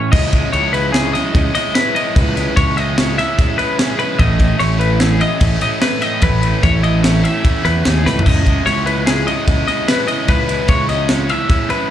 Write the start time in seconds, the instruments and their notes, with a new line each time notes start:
Already playing: clean electric guitar A2 E3 C#4 E4 B4 C#5, overdriven electric guitar A2 E3 A3 C#4 E4
0.12 fingered electric bass C#2, overdriven electric guitar C#3 G#3 C#4 E4, clean electric guitar D#5, kick, crash
0.32 overdriven electric guitar G#3 C#4 E4, kick, ride
0.52 fingered electric bass C#2, overdriven electric guitar C#3 G#3 C#4 E4, clean electric guitar C#5, ride
0.72 overdriven electric guitar C#3 G#3 C#4 E4, clean electric guitar B4, ride
0.91 overdriven electric guitar C#3 G#3 C#4 E4, clean electric guitar G#4, snare, ride
1.13 overdriven electric guitar C#3 G#3 C#4 E4, clean electric guitar D#5, snare, ride
1.32 fingered electric bass C#2, overdriven electric guitar C#3 G#3 C#4 E4, kick, ride
1.54 overdriven electric guitar G#3 C#4 E4, clean electric guitar D#5, snare, ride
1.74 overdriven electric guitar C#3 G#3 C#4 E4, clean electric guitar B4, snare, ride
1.95 overdriven electric guitar G#3 C#4 E4, clean electric guitar D#5, ride
2.15 fingered electric bass C#2, overdriven electric guitar C#3 G#3 C#4 E4, clean electric guitar B4, kick, ride
2.36 overdriven electric guitar G#3 C#4 E4, snare, ride
2.56 fingered electric bass C#2, overdriven electric guitar C#3 G#3 C#4 E4, clean electric guitar C#5, kick, ride
2.77 overdriven electric guitar C#3 G#3 C#4 E4, clean electric guitar D#5, ride
2.97 overdriven electric guitar C#3 G#3 C#4 E4, clean electric guitar C#5, snare, ride
3.17 overdriven electric guitar C#3 G#3 C#4 E4, clean electric guitar E5, snare, ride
3.38 overdriven electric guitar C#3 G#3 C#4 E4, kick, snare, ride
3.58 overdriven electric guitar G#3 C#4 E4, clean electric guitar B4, ride
3.78 overdriven electric guitar C#3 G#3 C#4 E4, clean electric guitar G#4, snare, ride
3.98 overdriven electric guitar G#3 C#4 E4, clean electric guitar B4, ride
4.18 fingered electric bass A1, overdriven electric guitar A2 E3 A3 C#4 E4, clean electric guitar D#5, kick, ride
4.39 overdriven electric guitar A3 C#4 E4, kick, ride
4.59 fingered electric bass A1, overdriven electric guitar E3 A3 C#4 E4, clean electric guitar C#5, snare, ride
4.79 overdriven electric guitar A2 E3 A3 C#4 E4, clean electric guitar B4, ride
4.98 overdriven electric guitar E3 A3 C#4 E4, clean electric guitar G#4, snare, ride
5.19 overdriven electric guitar A2 E3 A3 C#4 E4, clean electric guitar D#5, ride
5.40 fingered electric bass A1, overdriven electric guitar E3 A3 C#4 E4, kick, snare, ride
5.61 overdriven electric guitar A3 C#4 E4, clean electric guitar D#5, snare, ride
5.80 overdriven electric guitar A2 E3 A3 C#4 E4, clean electric guitar B4, snare, ride
6.01 overdriven electric guitar A3 C#4 E4, clean electric guitar D#5, snare, ride
6.21 fingered electric bass A1, overdriven electric guitar A2 E3 A3 C#4 E4, clean electric guitar B4, kick, ride
6.41 overdriven electric guitar A3 C#4 E4, ride
6.61 fingered electric bass A1, overdriven electric guitar E3 A3 C#4 E4, clean electric guitar C#5, kick, snare, ride
6.82 overdriven electric guitar A2 E3 A3 C#4 E4, clean electric guitar D#5, ride
7.02 overdriven electric guitar E3 A3 C#4 E4, clean electric guitar C#5, snare, ride
7.22 overdriven electric guitar A2 E3 A3 C#4 E4, clean electric guitar E5, ride
7.43 overdriven electric guitar E3 A3 C#4 E4, kick, ride
7.63 fingered electric bass E2, overdriven electric guitar A3 C#4 E4, clean electric guitar B4, snare, ride
7.84 fingered electric bass D#2, overdriven electric guitar A2 E3 A3 C#4 E4, clean electric guitar G#4, snare, ride
8.04 fingered electric bass C#2, overdriven electric guitar A3 C#4 E4, clean electric guitar B4, snare
8.19 floor tom
8.26 fingered electric bass C#2, overdriven electric guitar C#3 G#3 C#4 E4, clean electric guitar D#5, kick, crash
8.46 overdriven electric guitar G#3 C#4 E4, kick, ride
8.65 fingered electric bass C#2, overdriven electric guitar C#3 G#3 C#4 E4, clean electric guitar C#5, snare, ride
8.85 overdriven electric guitar C#3 G#3 C#4 E4, clean electric guitar B4, ride
9.06 overdriven electric guitar C#3 G#3 C#4 E4, clean electric guitar G#4, snare, ride
9.26 overdriven electric guitar C#3 G#3 C#4 E4, clean electric guitar D#5, ride
9.47 fingered electric bass C#2, overdriven electric guitar C#3 G#3 C#4 E4, kick, ride
9.67 overdriven electric guitar G#3 C#4 E4, clean electric guitar D#5, snare, ride
9.87 overdriven electric guitar C#3 G#3 C#4 E4, clean electric guitar B4, snare, ride
10.08 overdriven electric guitar G#3 C#4 E4, clean electric guitar D#5, ride
10.28 fingered electric bass C#2, overdriven electric guitar C#3 G#3 C#4 E4, clean electric guitar B4, kick, ride
10.48 overdriven electric guitar G#3 C#4 E4, ride
10.68 fingered electric bass C#2, overdriven electric guitar C#3 G#3 C#4 E4, clean electric guitar C#5, kick, snare, ride
10.88 overdriven electric guitar C#3 G#3 C#4 E4, clean electric guitar D#5, snare, ride
11.08 overdriven electric guitar C#3 G#3 C#4 E4, clean electric guitar C#5, snare, ride
11.29 overdriven electric guitar C#3 G#3 C#4 E4, clean electric guitar E5, ride
11.49 overdriven electric guitar C#3 G#3 C#4 E4, kick, snare, ride
11.70 overdriven electric guitar G#3 C#4 E4, clean electric guitar B4, ride